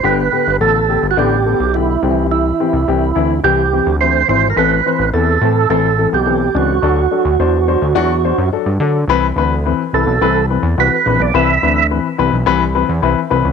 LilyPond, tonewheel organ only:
\new Staff \with { instrumentName = "Tonewheel organ" } { \time 4/4 \key c \lydian \tempo 4 = 106 b'4 a'8.~ a'32 fis'32 g'4 e'4 | e'2 g'4 c''8 c''16. bes'32 | b'4 a'4 a'8. g'8. fis'8~ | fis'2. r4 |
r4. a'4 r8 b'8. d''16 | e''4 r2. | }